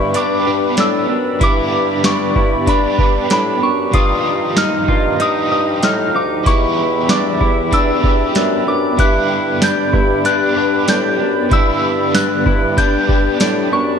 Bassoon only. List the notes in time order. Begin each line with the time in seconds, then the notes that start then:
Already playing: G2
0.46 G2
0.78 A2
1.10 F#2
1.41 G2
2.36 G2
2.99 G2
3.30 A2
3.62 F#2
3.94 G2
4.88 G2
5.51 G2
5.83 A2
6.15 D2
6.46 E2
7.41 E2
8.04 E2
8.36 F#2
8.67 F#2
8.99 G2
9.93 G2
10.57 G2
10.88 A2
11.20 F#2
11.51 G2
12.46 G2
13.09 G2
13.40 A2
13.72 F#2